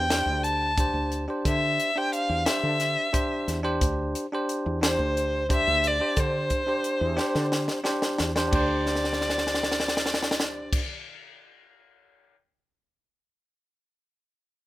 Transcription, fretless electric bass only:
0, 0, Header, 1, 2, 480
1, 0, Start_track
1, 0, Tempo, 674916
1, 1036, Time_signature, 7, 3, 24, 8
1, 10430, End_track
2, 0, Start_track
2, 0, Title_t, "Fretless electric bass"
2, 0, Program_c, 0, 35
2, 0, Note_on_c, 0, 40, 91
2, 180, Note_off_c, 0, 40, 0
2, 183, Note_on_c, 0, 38, 78
2, 644, Note_off_c, 0, 38, 0
2, 665, Note_on_c, 0, 38, 68
2, 897, Note_off_c, 0, 38, 0
2, 1030, Note_on_c, 0, 50, 78
2, 1260, Note_off_c, 0, 50, 0
2, 1631, Note_on_c, 0, 40, 84
2, 1746, Note_off_c, 0, 40, 0
2, 1871, Note_on_c, 0, 50, 81
2, 2100, Note_off_c, 0, 50, 0
2, 2471, Note_on_c, 0, 40, 71
2, 2700, Note_off_c, 0, 40, 0
2, 2711, Note_on_c, 0, 38, 84
2, 2940, Note_off_c, 0, 38, 0
2, 3314, Note_on_c, 0, 40, 87
2, 3541, Note_off_c, 0, 40, 0
2, 3544, Note_on_c, 0, 38, 79
2, 4004, Note_off_c, 0, 38, 0
2, 4034, Note_on_c, 0, 38, 76
2, 4261, Note_off_c, 0, 38, 0
2, 4386, Note_on_c, 0, 50, 82
2, 4617, Note_off_c, 0, 50, 0
2, 4985, Note_on_c, 0, 40, 89
2, 5103, Note_off_c, 0, 40, 0
2, 5228, Note_on_c, 0, 50, 79
2, 5458, Note_off_c, 0, 50, 0
2, 5829, Note_on_c, 0, 40, 70
2, 6055, Note_off_c, 0, 40, 0
2, 6060, Note_on_c, 0, 38, 82
2, 7694, Note_off_c, 0, 38, 0
2, 10430, End_track
0, 0, End_of_file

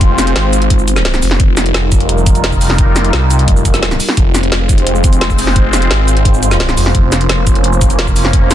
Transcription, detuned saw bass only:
0, 0, Header, 1, 2, 480
1, 0, Start_track
1, 0, Key_signature, -4, "minor"
1, 0, Tempo, 346821
1, 14, Time_signature, 4, 2, 24, 8
1, 11825, End_track
2, 0, Start_track
2, 0, Title_t, "Detuned saw bass"
2, 0, Program_c, 0, 39
2, 13, Note_on_c, 0, 29, 102
2, 474, Note_off_c, 0, 29, 0
2, 495, Note_on_c, 0, 32, 96
2, 1675, Note_off_c, 0, 32, 0
2, 1693, Note_on_c, 0, 29, 105
2, 1915, Note_off_c, 0, 29, 0
2, 1934, Note_on_c, 0, 29, 96
2, 2395, Note_off_c, 0, 29, 0
2, 2414, Note_on_c, 0, 29, 99
2, 3595, Note_off_c, 0, 29, 0
2, 3614, Note_on_c, 0, 29, 97
2, 3835, Note_off_c, 0, 29, 0
2, 3854, Note_on_c, 0, 29, 100
2, 4315, Note_off_c, 0, 29, 0
2, 4335, Note_on_c, 0, 36, 103
2, 4795, Note_off_c, 0, 36, 0
2, 4814, Note_on_c, 0, 29, 103
2, 5035, Note_off_c, 0, 29, 0
2, 5054, Note_on_c, 0, 29, 94
2, 5515, Note_off_c, 0, 29, 0
2, 5774, Note_on_c, 0, 29, 99
2, 6235, Note_off_c, 0, 29, 0
2, 6254, Note_on_c, 0, 29, 93
2, 7435, Note_off_c, 0, 29, 0
2, 7453, Note_on_c, 0, 29, 100
2, 7675, Note_off_c, 0, 29, 0
2, 7694, Note_on_c, 0, 29, 101
2, 8155, Note_off_c, 0, 29, 0
2, 8174, Note_on_c, 0, 32, 100
2, 9355, Note_off_c, 0, 32, 0
2, 9373, Note_on_c, 0, 29, 97
2, 9594, Note_off_c, 0, 29, 0
2, 9614, Note_on_c, 0, 29, 104
2, 10075, Note_off_c, 0, 29, 0
2, 10094, Note_on_c, 0, 29, 98
2, 11275, Note_off_c, 0, 29, 0
2, 11294, Note_on_c, 0, 29, 99
2, 11515, Note_off_c, 0, 29, 0
2, 11534, Note_on_c, 0, 29, 95
2, 11825, Note_off_c, 0, 29, 0
2, 11825, End_track
0, 0, End_of_file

